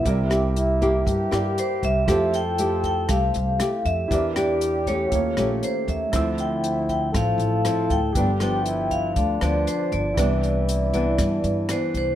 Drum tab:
HH |xxxxxxxx|xxxxxxxx|xxxxxxxx|xxxxxxxx|
SD |-r---r--|r---r-r-|-r---r--|r---r-r-|
BD |o--oo--o|o--oo--o|o--oo--o|o--oo--o|

HH |xxxxxxxx|xxxxxxxx|
SD |-r---r--|r---r-r-|
BD |o--oo--o|o--oo--o|